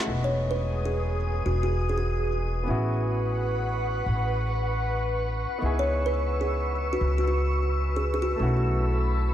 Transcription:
0.04 1.44 E1 medium
0.04 2.63 G#3 medium
0.04 2.62 B3 medium
0.04 2.64 G#4 medium
0.04 2.65 D#6 medium
0.08 2.66 D#4 medium
0.08 2.67 F#4 medium
0.24 0.45 C#5 medium
0.51 0.71 B4 medium
0.85 1.06 G#4 medium
1.46 2.65 E1 medium
1.46 1.61 F#4 medium
1.63 1.84 F#4 medium
1.89 1.95 G#4 medium
1.98 2.03 G#4 medium
2.63 4.04 A1 medium
2.63 5.41 B3 medium
2.63 5.42 C#4 medium
2.63 8.35 B4 medium
2.63 5.59 F#5 medium
2.63 8.35 C#6 medium
2.68 5.43 E4 medium
2.68 5.44 F#4 medium
4.06 5.43 A1 medium
5.58 6.99 C#2 medium
5.58 8.36 B3 medium
5.58 8.37 D#4 medium
5.58 9.34 E6 medium
5.63 8.38 E4 medium
5.63 8.39 G#4 medium
5.79 6.00 C#5 medium
6.06 6.26 B4 medium
6.41 6.61 G#4 medium
6.93 7.13 F#4 medium
7.01 8.38 C#2 medium
7.18 7.24 F#4 medium
7.28 7.33 F#4 medium
7.96 8.12 G#4 medium
8.14 8.20 G#4 medium
8.22 8.43 F#4 medium
8.36 9.34 B1 medium
8.36 9.34 A3 medium
8.36 9.34 C#4 medium
8.36 9.34 A4 medium
8.36 9.34 B5 medium
8.40 9.34 E4 medium
8.40 9.34 F#4 medium

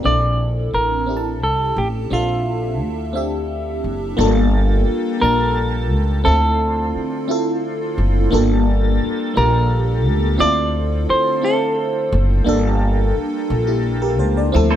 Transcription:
0.00 1.00 C4 medium
0.00 0.20 F4 soft
0.04 0.70 A#1 medium
0.04 1.00 D4 medium
0.04 1.01 E4 medium
0.04 1.02 A4 medium
0.04 0.70 D5 medium
0.74 1.42 A1 medium
0.74 1.39 A#4 medium
1.06 2.03 C4 medium
1.06 2.04 D4 medium
1.06 2.04 E4 medium
1.10 1.15 G4 medium
1.17 2.08 A5 medium
1.42 1.73 C2 medium
1.42 1.78 A4 medium
1.76 2.08 A1 medium
1.76 1.87 G4 medium
2.10 2.80 A#1 medium
2.10 3.07 C4 medium
2.10 3.07 D4 medium
2.10 3.80 F4 medium
2.10 3.09 A4 medium
2.10 3.08 E5 medium
2.80 3.80 D2 medium
3.13 4.10 C4 medium
3.13 4.10 D4 medium
3.13 4.12 G4 medium
3.13 4.11 E5 medium
3.84 4.15 F#1 medium
4.17 4.83 G1 loud
4.17 14.76 F3 medium
4.17 6.23 G3 medium
4.17 5.13 A#3 loud
4.17 6.23 A#3 medium
4.17 5.14 D4 medium
4.17 5.15 F4 medium
4.17 5.15 A4 loud
4.17 6.23 A5 medium
4.87 muted upright bass stroke soft
5.20 5.92 A#1 medium
5.20 6.17 A#3 medium
5.20 6.18 D4 medium
5.20 6.18 F4 medium
5.20 6.24 A#4 loud
5.20 6.19 A5 medium
5.92 6.22 C#2 medium
6.24 6.90 D2 loud
6.24 8.30 D3 medium
6.24 8.30 A3 medium
6.24 7.20 C4 medium
6.24 8.30 C4 medium
6.24 7.21 E4 medium
6.24 7.22 F4 medium
6.24 7.93 A4 loud
6.28 7.22 A4 medium
6.95 muted upright bass stroke soft
7.28 8.24 C4 medium
7.28 8.25 E4 medium
7.28 8.25 F4 medium
7.28 8.26 A4 medium
7.98 8.29 F#1 medium
8.31 8.97 G1 medium
8.31 10.37 G3 medium
8.31 9.27 A#3 loud
8.31 10.37 A#3 medium
8.31 9.28 D4 medium
8.31 9.29 F4 medium
8.31 9.29 A4 loud
8.31 10.37 A5 medium
9.02 muted upright bass stroke soft
9.34 10.06 A#1 loud
9.34 10.31 A#3 medium
9.34 10.31 D4 medium
9.34 10.32 F4 medium
9.34 10.40 A#4 medium
9.38 10.33 G4 medium
10.06 10.36 C#2 medium
10.38 11.04 D2 loud
10.38 12.43 D3 medium
10.38 12.43 A3 medium
10.38 11.34 C4 medium
10.38 12.43 C4 medium
10.38 11.35 E4 medium
10.38 11.36 F4 medium
10.38 11.36 A4 medium
10.38 11.10 D5 loud
11.09 11.44 C5 medium
11.09 muted upright bass stroke soft
11.42 12.38 C4 medium
11.42 12.39 E4 medium
11.42 12.39 F4 medium
11.42 12.17 A4 medium
11.42 12.40 C5 medium
12.12 12.43 F#1 loud
12.44 13.11 G1 medium
12.44 14.51 G3 medium
12.44 13.41 A#3 medium
12.44 14.51 A#3 medium
12.44 13.42 D4 medium
12.44 13.42 F4 medium
12.44 14.51 A4 medium
12.49 13.43 A4 loud
13.16 muted upright bass stroke soft
13.50 14.19 A#1 medium
13.67 14.00 E4 medium
13.67 14.00 G4 medium
14.02 14.18 G4 medium
14.02 14.18 A#4 medium
14.19 14.50 C#2 medium
14.19 14.35 A4 medium
14.19 14.35 C5 medium
14.37 14.70 A#4 medium
14.37 14.69 D5 medium
14.52 14.76 D2 loud
14.52 14.76 D3 medium
14.52 14.76 F3 medium
14.52 14.76 A3 medium
14.52 14.76 C4 loud
14.52 14.76 C4 medium
14.52 14.76 E4 medium
14.52 14.76 A4 loud
14.70 14.76 A4 medium
14.70 14.76 C5 medium

